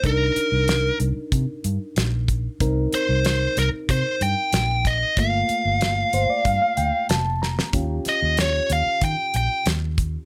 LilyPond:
<<
  \new Staff \with { instrumentName = "Lead electric guitar" } { \time 4/4 \key c \dorian \tempo 4 = 94 bes'4. r2 r8 | r8 c''8 c''8 bes'8 c''8 g''4 ees''8 | f''2. r4 | r8 ees''8 des''8 f''8 g''8 g''8 r4 | }
  \new Staff \with { instrumentName = "Reed electric piano" } { \time 4/4 \key c \dorian << { r1 | r1 | r4. c''16 d''16 f''16 f''16 g''8 a''8 bes''8 | r1 | } \\ { <d' ees' bes'>1 | <c' ees' bes'>1 | <a bes f'>1 | <des' f' g'>1 | } >> }
  \new Staff \with { instrumentName = "Fingered electric bass" } { \clef bass \time 4/4 \key c \dorian c,8 r16 c,8. c,16 r16 c16 r16 g,16 r16 bes,,4 | c,8 r16 c,8. c,16 r16 c16 r16 g,16 r16 bes,,4 | g,,8 r16 g,,8. g,,16 r16 g,16 r16 d,16 r16 f,,4 | ees,8 r16 ees,8. ees,16 r16 ees16 r16 bes,,16 r16 ees,4 | }
  \new DrumStaff \with { instrumentName = "Drums" } \drummode { \time 4/4 <hh bd>8 hh8 <hh sn>8 hh8 <hh bd>8 hh8 <hh sn>8 <hh bd>8 | <hh bd>8 hh8 <hh sn>8 <hh sn>8 <hh bd>8 hh8 <hh sn>8 <hh bd>8 | <hh bd>8 hh8 <hh sn>8 hh8 <hh bd>8 hh8 <hh sn>8 sn16 sn16 | <hh bd>8 <hh sn>8 <hh sn>8 hh8 <hh bd>8 hh8 <hh sn>8 <hh bd>8 | }
>>